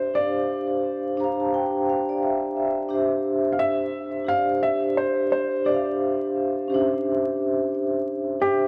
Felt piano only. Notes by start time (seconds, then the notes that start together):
Already playing: C5
0.15 D5
3.52 F5
3.59 E5
4.28 F5
4.63 E5
4.97 C5
5.32 C5
5.66 D5
8.42 G4